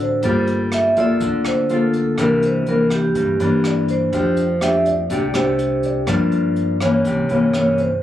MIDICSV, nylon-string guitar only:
0, 0, Header, 1, 2, 480
1, 0, Start_track
1, 0, Tempo, 487013
1, 226, Time_signature, 4, 2, 24, 8
1, 7911, End_track
2, 0, Start_track
2, 0, Title_t, "Nylon-string guitar"
2, 0, Program_c, 0, 24
2, 0, Note_on_c, 0, 50, 54
2, 0, Note_on_c, 0, 60, 51
2, 0, Note_on_c, 0, 66, 56
2, 0, Note_on_c, 0, 69, 61
2, 191, Note_off_c, 0, 60, 0
2, 193, Note_off_c, 0, 66, 0
2, 196, Note_off_c, 0, 69, 0
2, 204, Note_off_c, 0, 50, 0
2, 233, Note_on_c, 0, 55, 51
2, 240, Note_on_c, 0, 58, 51
2, 241, Note_on_c, 0, 65, 52
2, 246, Note_on_c, 0, 69, 58
2, 912, Note_off_c, 0, 58, 0
2, 914, Note_off_c, 0, 65, 0
2, 917, Note_off_c, 0, 69, 0
2, 952, Note_on_c, 0, 58, 52
2, 957, Note_on_c, 0, 65, 58
2, 964, Note_on_c, 0, 69, 62
2, 1165, Note_off_c, 0, 55, 0
2, 1196, Note_on_c, 0, 50, 54
2, 1630, Note_off_c, 0, 58, 0
2, 1632, Note_off_c, 0, 65, 0
2, 1635, Note_off_c, 0, 69, 0
2, 1676, Note_on_c, 0, 58, 55
2, 1678, Note_on_c, 0, 65, 56
2, 1683, Note_on_c, 0, 69, 59
2, 2112, Note_off_c, 0, 58, 0
2, 2112, Note_off_c, 0, 65, 0
2, 2115, Note_off_c, 0, 69, 0
2, 2126, Note_off_c, 0, 50, 0
2, 2150, Note_on_c, 0, 48, 52
2, 2153, Note_on_c, 0, 52, 50
2, 2156, Note_on_c, 0, 58, 55
2, 2158, Note_on_c, 0, 62, 61
2, 2589, Note_off_c, 0, 52, 0
2, 2592, Note_off_c, 0, 58, 0
2, 2592, Note_off_c, 0, 62, 0
2, 2639, Note_on_c, 0, 52, 50
2, 2643, Note_on_c, 0, 58, 48
2, 2648, Note_on_c, 0, 62, 55
2, 3083, Note_off_c, 0, 48, 0
2, 3110, Note_on_c, 0, 43, 55
2, 3313, Note_off_c, 0, 52, 0
2, 3315, Note_off_c, 0, 58, 0
2, 3317, Note_off_c, 0, 62, 0
2, 3348, Note_on_c, 0, 52, 59
2, 3356, Note_on_c, 0, 58, 56
2, 3359, Note_on_c, 0, 62, 60
2, 4027, Note_off_c, 0, 52, 0
2, 4032, Note_off_c, 0, 58, 0
2, 4032, Note_off_c, 0, 62, 0
2, 4043, Note_off_c, 0, 43, 0
2, 4073, Note_on_c, 0, 53, 51
2, 4076, Note_on_c, 0, 57, 47
2, 4078, Note_on_c, 0, 62, 51
2, 4083, Note_on_c, 0, 67, 55
2, 4378, Note_off_c, 0, 57, 0
2, 4381, Note_off_c, 0, 62, 0
2, 4381, Note_off_c, 0, 67, 0
2, 4541, Note_on_c, 0, 57, 45
2, 4547, Note_on_c, 0, 62, 51
2, 4554, Note_on_c, 0, 67, 54
2, 4852, Note_off_c, 0, 57, 0
2, 4855, Note_off_c, 0, 62, 0
2, 4858, Note_off_c, 0, 67, 0
2, 5005, Note_off_c, 0, 53, 0
2, 5032, Note_on_c, 0, 48, 54
2, 5033, Note_on_c, 0, 57, 50
2, 5036, Note_on_c, 0, 62, 56
2, 5046, Note_on_c, 0, 67, 55
2, 5168, Note_off_c, 0, 57, 0
2, 5171, Note_off_c, 0, 62, 0
2, 5176, Note_off_c, 0, 67, 0
2, 5269, Note_on_c, 0, 57, 59
2, 5274, Note_on_c, 0, 62, 59
2, 5278, Note_on_c, 0, 67, 64
2, 5949, Note_off_c, 0, 57, 0
2, 5951, Note_off_c, 0, 62, 0
2, 5953, Note_off_c, 0, 67, 0
2, 5965, Note_off_c, 0, 48, 0
2, 5979, Note_on_c, 0, 43, 51
2, 5982, Note_on_c, 0, 53, 58
2, 5984, Note_on_c, 0, 58, 48
2, 5989, Note_on_c, 0, 62, 58
2, 6665, Note_off_c, 0, 53, 0
2, 6667, Note_off_c, 0, 58, 0
2, 6669, Note_off_c, 0, 62, 0
2, 6714, Note_on_c, 0, 52, 59
2, 6719, Note_on_c, 0, 58, 60
2, 6722, Note_on_c, 0, 61, 59
2, 6919, Note_off_c, 0, 43, 0
2, 6960, Note_on_c, 0, 48, 52
2, 7152, Note_off_c, 0, 52, 0
2, 7154, Note_off_c, 0, 58, 0
2, 7156, Note_off_c, 0, 61, 0
2, 7198, Note_on_c, 0, 52, 56
2, 7206, Note_on_c, 0, 58, 58
2, 7213, Note_on_c, 0, 61, 61
2, 7394, Note_off_c, 0, 52, 0
2, 7398, Note_off_c, 0, 58, 0
2, 7400, Note_off_c, 0, 61, 0
2, 7434, Note_on_c, 0, 52, 54
2, 7441, Note_on_c, 0, 58, 58
2, 7445, Note_on_c, 0, 61, 54
2, 7753, Note_off_c, 0, 52, 0
2, 7756, Note_off_c, 0, 58, 0
2, 7759, Note_off_c, 0, 61, 0
2, 7890, Note_off_c, 0, 48, 0
2, 7911, End_track
0, 0, End_of_file